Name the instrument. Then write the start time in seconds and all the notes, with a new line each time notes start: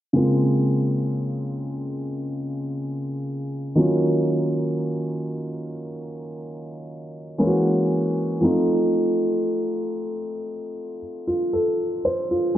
felt piano
0.13 C#3 G#3 A#3 C4
0.17 F4
3.75 D#3 F#3 A#3 C#4
3.80 F4
7.38 E3 G#3 A#3 C#4 E4
7.47 F#4
8.41 F3 A3 C4 D#4
8.45 F4
11.27 F4
11.53 A4
12.05 C5
12.31 F4